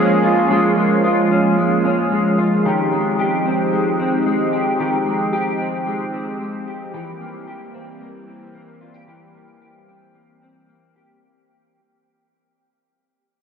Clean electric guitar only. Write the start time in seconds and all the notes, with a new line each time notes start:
Already playing: G#3 C#4 F4
0.24 F4
0.51 G#3 F4
0.77 G#3
1.04 F4
1.31 C#4
1.58 G#3
1.85 C#4
2.12 G#3
2.38 F4
2.65 D#3 G4
2.92 G#3
3.19 G4
3.46 C4
3.73 G#3
3.99 C4
4.26 G#3
4.53 G4
4.80 D#3 G4
5.06 G#3
5.33 G4
5.60 C4
5.87 G#3
6.13 C4
6.40 G#3
6.68 G4
6.94 E3 G4
7.21 A#3
7.47 G4
7.74 C4
8.01 A#3
8.27 C4
8.55 A#3
8.81 F4
8.94 G4
9.08 E3 G4
9.35 A#3
9.62 G4
9.88 C4
10.15 A#3
10.42 C4
10.69 A#3
10.96 G4